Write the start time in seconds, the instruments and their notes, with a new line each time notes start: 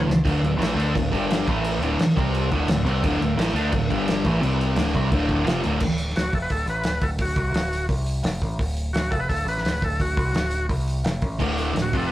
0.06 picked electric bass C#2, snare
0.24 picked electric bass D1, distorted electric guitar D2 A2 D3, kick, crash
0.40 picked electric bass D1, distorted electric guitar D2 A2
0.44 crash
0.57 picked electric bass A1, distorted electric guitar A2 E3 A3
0.62 snare, crash
0.75 picked electric bass D2, distorted electric guitar D3 A3 D4
0.80 crash
0.95 picked electric bass D1, distorted electric guitar D2 A2, kick, crash
1.12 picked electric bass G1, distorted electric guitar G2 D3 G3, kick, crash
1.30 snare, crash
1.48 picked electric bass A1, distorted electric guitar A2 E3 A3, kick, crash
1.64 crash
1.79 picked electric bass D1, distorted electric guitar D2 A2 D3, crash
1.99 muted picked electric bass stroke, muted distorted electric guitar stroke, snare, crash
2.10 snare
2.16 picked electric bass C2, distorted electric guitar C3 G3 C4, kick, crash
2.35 crash
2.51 picked electric bass D1, distorted electric guitar D2 A2 D3, kick, crash
2.66 picked electric bass D1, distorted electric guitar D2 A2, snare, crash
2.84 picked electric bass C2, distorted electric guitar C3 G3 C4, crash
3.03 picked electric bass D1, distorted electric guitar D2 A2 D3, kick, crash
3.19 picked electric bass D1, distorted electric guitar D2 A2, crash
3.37 picked electric bass A1, distorted electric guitar A2 E3 A3, snare, crash
3.49 snare
3.53 picked electric bass D2, distorted electric guitar D3 A3 D4, crash
3.72 picked electric bass D1, distorted electric guitar D2 A2, kick, crash
3.89 picked electric bass G1, distorted electric guitar G2 D3 G3, kick, crash
4.08 snare, crash
4.25 picked electric bass A1, distorted electric guitar A2 E3 A3, kick, crash
4.41 picked electric bass C2, distorted electric guitar C3 G3 C4, crash
4.61 crash
4.76 picked electric bass D1, distorted electric guitar D2 A2 D3, snare, crash
4.87 snare
4.94 picked electric bass C2, distorted electric guitar C3 G3 C4, kick, crash
5.12 picked electric bass D1, distorted electric guitar D2 A2 D3, kick, crash
5.29 kick, crash
5.45 picked electric bass F1, distorted electric guitar F2 C3 F3, snare, crash
5.63 picked electric bass D1, distorted electric guitar D2 A2 D3, crash
5.80 picked electric bass D1, kick, crash
5.98 open hi-hat
6.10 snare
6.16 picked electric bass D1, transistor combo organ F#4, snare, open hi-hat
6.33 picked electric bass F1, transistor combo organ A4, kick, open hi-hat
6.42 transistor combo organ B4
6.50 picked electric bass D1, transistor combo organ A4, kick, open hi-hat
6.66 picked electric bass A1, transistor combo organ B4, open hi-hat
6.84 picked electric bass D1, snare, open hi-hat
7.01 picked electric bass D1, transistor combo organ A4, kick, open hi-hat
7.19 transistor combo organ F#4, kick, open hi-hat
7.36 picked electric bass C2, kick, open hi-hat
7.51 picked electric bass D1, open hi-hat
7.56 snare
7.73 open hi-hat
7.89 picked electric bass C2, kick, open hi-hat
8.06 open hi-hat
8.23 picked electric bass F1, snare, open hi-hat
8.42 picked electric bass A1, kick, open hi-hat
8.59 picked electric bass D1, kick, open hi-hat
8.77 open hi-hat
8.93 picked electric bass D1, transistor combo organ F#4, snare, open hi-hat
9.11 picked electric bass F1, transistor combo organ A4, kick, open hi-hat
9.20 transistor combo organ B4
9.29 picked electric bass D1, transistor combo organ A4, kick, open hi-hat
9.45 picked electric bass A1, transistor combo organ B4, open hi-hat
9.58 snare
9.64 picked electric bass D1, snare, open hi-hat
9.81 picked electric bass D1, transistor combo organ A4, kick, open hi-hat
10.00 transistor combo organ F#4, kick, open hi-hat
10.17 picked electric bass C2, kick, open hi-hat
10.33 picked electric bass D1, snare, open hi-hat
10.51 open hi-hat
10.69 picked electric bass C2, kick, open hi-hat
10.88 open hi-hat
11.04 picked electric bass F1, snare, open hi-hat
11.22 picked electric bass A1, kick, open hi-hat
11.39 picked electric bass D1, distorted electric guitar D2 A2 D3, kick, crash
11.58 open hi-hat
11.73 picked electric bass D1, distorted electric guitar D2 A2, open hi-hat
11.77 snare
11.82 transistor combo organ F#4
11.93 picked electric bass F1, distorted electric guitar F2 C3 F3, kick, open hi-hat
11.98 transistor combo organ A4
12.07 transistor combo organ B4